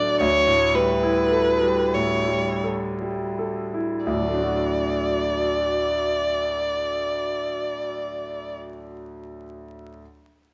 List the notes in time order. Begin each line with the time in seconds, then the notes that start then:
Already playing: D2 A2 F#3 D4 A4 D5
0.20 D2 C#5
0.47 A2
0.75 G3 B4
1.03 E4
1.32 A4
1.63 G3
1.94 A2 C#5
2.28 G3
2.64 A4
3.01 G3
3.39 A4
3.74 E4
4.04 D2 D5
4.14 A2
4.21 F#3
4.28 A3
4.34 D4
4.42 F#4